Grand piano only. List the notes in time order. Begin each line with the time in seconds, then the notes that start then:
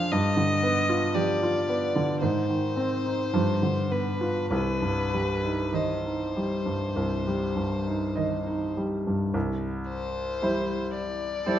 Already playing: F2 F3 D4 F4 G#4
0.12 G2
0.37 D3
0.63 B3
0.89 F4
1.15 G4
1.43 F4
1.69 B3
1.96 D3
2.22 G#2
2.50 D#3
2.76 C4
3.06 D#4
3.33 G2
3.62 D3
3.91 B3
4.21 F4
4.51 C2
4.82 G2
5.13 G3
5.43 D#4
5.74 D#5
6.05 D#4
6.36 G3
6.66 G2
6.96 C2
7.27 G3
7.56 G2
7.87 D#4
8.16 D#5
8.46 D#4
8.77 G3
9.07 G2
9.34 C2
10.42 G3 E4 C5
11.46 G3 E4 C5